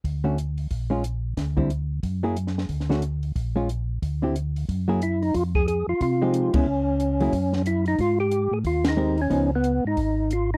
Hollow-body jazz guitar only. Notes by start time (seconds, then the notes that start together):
0.24 D3 A3 C#4 F#4
0.90 G#3 C#4 F4
1.57 D3 G3 C4 E4
2.23 F#3 A#3 E4 G#4
2.89 D3 A3 C#4 F#4
3.56 G#3 C#4 F4
4.22 D3 C4 E4 G4
4.88 F#3 A#3 E4 G#4
6.22 F3 G#3 D#4 G4
6.53 G#3 B3 E4
7.21 F#3 A#3 E4 G#4
8.97 G#3 C4 G4 A#4
9.30 F3 B3 D#4